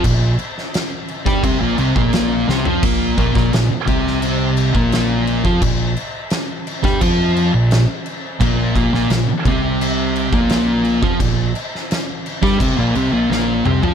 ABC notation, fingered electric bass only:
X:1
M:4/4
L:1/16
Q:1/4=86
K:Bblyd
V:1 name="Fingered electric bass" clef=bass
B,,,2 z4 z G,, C,, B,,, C,, B,,, B,,,2 C,, F,, | B,,,2 B,,, B,,, B,,, z C,,4- C,, B,,,4 F,, | B,,,2 z4 z G,, F,,3 B,,,2 z3 | B,,,2 B,,, B,,, B,,, z C,,4- C,, B,,,4 F,, |
B,,,2 z4 z G,, C,, B,,, C,, B,,, B,,,2 C,, F,, |]